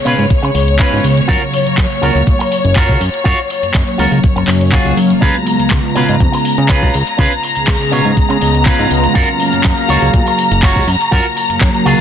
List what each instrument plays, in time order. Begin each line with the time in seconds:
Already playing: analog synth pad C#3 G#3 B3 G#4, string section C#5
0.05 analog synth bass B2, clean electric guitar C#4 F4 B4, open hi-hat
0.19 analog synth bass G#2, closed hi-hat
0.30 kick, closed hi-hat
0.42 analog synth bass C#3, muted clean electric guitar stroke, closed hi-hat
0.54 analog synth bass C#2, muted clean electric guitar stroke, open hi-hat
0.66 analog synth pad C#3 G#3 B3 F4, muted clean electric guitar stroke, closed hi-hat
0.79 clean electric guitar C#4 F4 B4, kick, clap, closed hi-hat
0.92 analog synth bass G#2, closed hi-hat
1.04 analog synth bass C#2, open hi-hat
1.17 closed hi-hat
1.28 analog synth bass F#2, analog synth pad C#3 F#3 A#3 F5, clean electric guitar F4 F#4 A#4, kick, closed hi-hat
1.42 closed hi-hat
1.52 muted clean electric guitar stroke, open hi-hat
1.65 analog synth bass F#2, analog synth pad C#3 F#3 A#3 F5, closed hi-hat
1.77 analog synth bass F#2, muted clean electric guitar stroke, kick, clap, closed hi-hat
1.90 muted clean electric guitar stroke, closed hi-hat
2.01 analog synth bass C#2, clean electric guitar F4 F#4 A#4, open hi-hat
2.15 analog synth bass C#2, closed hi-hat
2.27 analog synth bass A#2, analog synth pad C#3 F#3 A#3 F#4, kick, closed hi-hat
2.39 muted clean electric guitar stroke, open hi-hat
2.51 muted clean electric guitar stroke, open hi-hat
2.64 analog synth bass F#1, muted clean electric guitar stroke, closed hi-hat
2.75 clean electric guitar F4 F#4 A#4, kick, clap, closed hi-hat
2.89 analog synth bass C#2, kick, closed hi-hat
3.00 analog synth bass F#2, open hi-hat
3.14 closed hi-hat
3.24 analog synth bass F#2, analog synth pad C#3, clean electric guitar F4 F#4 C#5, kick, closed hi-hat
3.39 closed hi-hat
3.49 muted clean electric guitar stroke, open hi-hat
3.61 analog synth bass F#2, analog synth pad C#3 F#3 A#3, closed hi-hat
3.73 analog synth bass F#2, muted clean electric guitar stroke, kick, clap, closed hi-hat
3.86 muted clean electric guitar stroke, closed hi-hat
3.98 analog synth bass C#2, clean electric guitar F4 F#4 A#4, open hi-hat
4.11 analog synth bass C#2, closed hi-hat
4.24 kick, closed hi-hat
4.36 analog synth bass F#1, muted clean electric guitar stroke, closed hi-hat
4.48 analog synth bass F#2, muted clean electric guitar stroke, clap, open hi-hat
4.60 analog synth pad C#3 F#3 A#3 D#4, muted clean electric guitar stroke, closed hi-hat
4.72 analog synth pad C#3 F#3 A#3 F5, clean electric guitar F4 F#4 G#4, kick, clap, closed hi-hat
4.85 analog synth bass C#2, closed hi-hat
4.97 analog synth bass F#2, open hi-hat
5.10 closed hi-hat
5.21 analog synth bass C#2, analog synth pad C#3 G#3 B3 F4, clean electric guitar C#4 F4 B4, string section A#5, kick, closed hi-hat, maracas
5.34 closed hi-hat, maracas
5.46 muted clean electric guitar stroke, open hi-hat
5.59 analog synth bass C#2, analog synth pad C#3 G#3 B3 F4, closed hi-hat, maracas
5.70 analog synth bass C#2, muted clean electric guitar stroke, kick, clap, closed hi-hat, maracas
5.83 muted clean electric guitar stroke, closed hi-hat, maracas
5.95 analog synth bass B2, clean electric guitar C#4 F4 B4, open hi-hat
6.09 analog synth bass G#2, closed hi-hat, maracas
6.20 analog synth bass F2, analog synth pad C#3 G#3 B3 G#4, kick, closed hi-hat, maracas
6.32 muted clean electric guitar stroke, open hi-hat, maracas
6.44 muted clean electric guitar stroke, open hi-hat
6.57 analog synth bass C#3, muted clean electric guitar stroke, closed hi-hat, maracas
6.69 clean electric guitar C#4 F4 B4, kick, clap, closed hi-hat, maracas
6.82 analog synth bass B1, kick, closed hi-hat, maracas
6.94 analog synth bass C#2, open hi-hat
7.07 closed hi-hat, maracas
7.18 analog synth bass C#2, analog synth pad C#3 G#3 B3 F4, clean electric guitar C#4 F4 B4, kick, closed hi-hat, maracas
7.32 closed hi-hat, maracas
7.43 muted clean electric guitar stroke, open hi-hat
7.55 analog synth bass C#2, analog synth pad C#3 G#3 B3 G#4, closed hi-hat, maracas
7.67 analog synth bass C#2, muted clean electric guitar stroke, kick, clap, closed hi-hat, maracas
7.80 muted clean electric guitar stroke, closed hi-hat, maracas
7.91 analog synth bass B2, clean electric guitar C#4 F4 C#5, open hi-hat
8.05 analog synth bass G#2, closed hi-hat, maracas
8.17 kick, closed hi-hat, maracas
8.29 analog synth bass C#3, muted clean electric guitar stroke, closed hi-hat, maracas
8.40 analog synth bass C#2, muted clean electric guitar stroke, open hi-hat
8.53 analog synth pad C#3 G#3 B3 F4, muted clean electric guitar stroke, closed hi-hat, maracas
8.65 clean electric guitar C#4 F4 B4, kick, clap, closed hi-hat, maracas
8.79 analog synth bass G#2, closed hi-hat, maracas
8.91 analog synth bass C#2, open hi-hat
9.03 closed hi-hat, maracas
9.14 analog synth bass F#2, analog synth pad C#3 F#3 A#3 F5, clean electric guitar F4 F#4 A#4, kick, closed hi-hat, maracas
9.28 closed hi-hat, maracas
9.39 muted clean electric guitar stroke, open hi-hat
9.52 analog synth bass F#2, analog synth pad C#3 F#3 A#3 F5, closed hi-hat, maracas
9.64 analog synth bass F#2, muted clean electric guitar stroke, kick, clap, closed hi-hat, maracas
9.77 muted clean electric guitar stroke, closed hi-hat, maracas
9.88 analog synth bass C#2, clean electric guitar F4 F#4 C#5, open hi-hat
10.02 analog synth bass C#2, closed hi-hat, maracas
10.13 analog synth bass A#2, analog synth pad C#3 F#3 A#3 F#4, kick, closed hi-hat, maracas
10.26 muted clean electric guitar stroke, open hi-hat, maracas
10.38 muted clean electric guitar stroke, open hi-hat
10.51 analog synth bass F#1, muted clean electric guitar stroke, closed hi-hat, maracas
10.62 clean electric guitar F4 F#4 C#5, kick, clap, closed hi-hat, maracas
10.76 analog synth bass C#2, kick, closed hi-hat, maracas
10.87 analog synth bass F#2, open hi-hat
11.01 closed hi-hat, maracas
11.11 analog synth bass F#2, analog synth pad C#3 F#3 A#3 F4, clean electric guitar F4 F#4 A#4, kick, closed hi-hat, maracas
11.25 closed hi-hat, maracas
11.36 muted clean electric guitar stroke, open hi-hat
11.48 analog synth bass F#2, analog synth pad C#3 F#3 A#3, closed hi-hat, maracas
11.60 analog synth bass F#2, muted clean electric guitar stroke, kick, clap, closed hi-hat, maracas
11.73 muted clean electric guitar stroke, closed hi-hat, maracas
11.85 analog synth bass C#2, clean electric guitar F4 F#4 G#4, open hi-hat